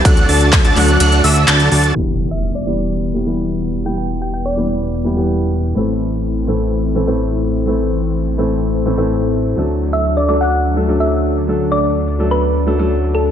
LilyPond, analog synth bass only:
\new Staff \with { instrumentName = "Analog synth bass" } { \clef bass \time 4/4 \key e \minor \tempo 4 = 126 d,8 d,8. d,16 d,8 d,8 d,8 d,8 d,8 | e,,1~ | e,,1 | a,,1~ |
a,,1 | d,1~ | d,1 | }